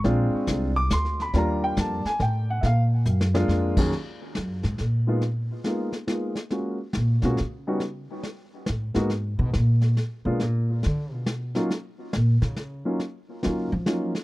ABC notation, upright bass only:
X:1
M:3/4
L:1/8
Q:"Swing" 1/4=139
K:Ebm
V:1 name="Upright bass" clef=bass
B,,, z =C,,2 =D,,2 | E,,2 F,, z =A,,2 | B,,2 G,,2 F,,2 | z2 G,, A,, B,,2- |
B,, z4 z | z2 B,, C, D,2- | D, z3 =A,, _A,,- | A,, C, B,,2 z C, |
B,,2 =D, C,2 z | z2 B,, D,2 z | z2 D, F,2 z |]